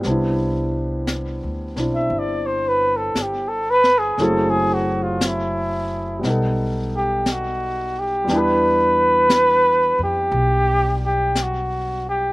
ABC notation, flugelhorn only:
X:1
M:4/4
L:1/16
Q:"Swing" 1/4=58
K:C
V:1 name="Flugelhorn"
z6 z e d c B A G A B _A | A _A ^F =F E4 z2 G2 ^F2 G2 | B6 G4 G2 ^F2 G2 |]